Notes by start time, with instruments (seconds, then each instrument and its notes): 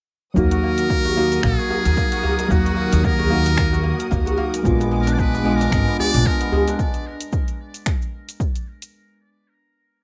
0.34 upright bass D#2, synth keys F#3 A#3 D#4, guzheng A#3, string section A#4 F#5 D#6, muted trumpet A#4, kick, shaker
0.38 synth keys F#4
0.51 guzheng F#4, closed hi-hat, djembe slap, shaker
0.63 guzheng A#3
0.78 guzheng A#4, closed hi-hat, shaker
0.90 guzheng A#3, kick, shaker
1.05 guzheng F#4, closed hi-hat, djembe tone, shaker
1.15 synth keys F#3 A#3 D#4 F#4, guzheng A#3
1.32 guzheng A#4, closed hi-hat, djembe slap, shaker
1.43 upright bass A#1, guzheng A#3, muted trumpet G#4, finger snap, kick, shaker
1.59 guzheng F#4, shaker
1.70 guzheng A#3, djembe slap, djembe tone
1.85 upright bass D#2, guzheng A#4, closed hi-hat, shaker
1.97 guzheng A#3, kick, shaker
2.12 guzheng F#4, closed hi-hat, djembe slap, shaker
2.23 guzheng A#3, djembe bass
2.39 guzheng A#4, closed hi-hat, djembe slap, shaker
2.48 upright bass D#2, synth keys F#3 A#3 D#4 F#4, guzheng A#3, muted trumpet F#4, kick, shaker
2.65 guzheng F#4, closed hi-hat, djembe slap, shaker
2.76 guzheng A#3, djembe tone
2.91 upright bass D#2, guzheng A#4, closed hi-hat, shaker
3.04 guzheng A#3, muted trumpet A#4, kick, shaker
3.18 guzheng F#4, closed hi-hat, djembe tone, djembe bass, shaker
3.29 synth keys F#3 A#3 D#4 F#4, guzheng A#3
3.45 guzheng A#4, closed hi-hat, shaker
3.57 guzheng A#3, finger snap, kick, shaker
3.73 guzheng F#4, djembe tone, shaker
3.83 guzheng A#3
3.99 guzheng A#4, closed hi-hat, shaker
4.11 upright bass D#2, guzheng A#3, kick, shaker
4.26 guzheng F#4, closed hi-hat, djembe tone, djembe bass, shaker
4.38 guzheng A#3
4.54 guzheng A#4, closed hi-hat, shaker
4.63 upright bass A#1, synth keys G#3 B3 D4 F4, guzheng G#3, string section B3 G#5 D6, kick, shaker
4.80 guzheng B3, closed hi-hat, djembe slap, shaker
4.91 guzheng G#3
5.01 muted trumpet A#4
5.07 guzheng D4, closed hi-hat, shaker
5.13 muted trumpet D5
5.18 guzheng G#3, muted trumpet B4, kick, shaker
5.34 guzheng B3, closed hi-hat, djembe tone, shaker
5.43 synth keys G#3 B3 D4 F4, guzheng G#3
5.55 muted trumpet A#4
5.60 guzheng D4, closed hi-hat, djembe slap, shaker
5.72 upright bass G#1, guzheng G#3, finger snap, kick, shaker
5.88 guzheng B3, shaker
5.99 guzheng G#3, muted trumpet D5, djembe slap, djembe tone
6.14 upright bass A#1, guzheng D4, closed hi-hat, shaker
6.26 guzheng G#3, muted trumpet A#4, kick, shaker
6.41 guzheng B3, closed hi-hat, djembe slap, shaker
6.52 guzheng G#3, djembe bass
6.68 guzheng D4, closed hi-hat, djembe slap, shaker
6.79 kick, shaker
6.94 closed hi-hat, shaker
7.21 closed hi-hat, shaker
7.33 kick, shaker
7.48 closed hi-hat, shaker
7.74 closed hi-hat, shaker
7.86 finger snap, kick, shaker
8.02 shaker
8.29 closed hi-hat, shaker
8.40 kick, shaker
8.56 closed hi-hat, shaker
8.82 closed hi-hat, shaker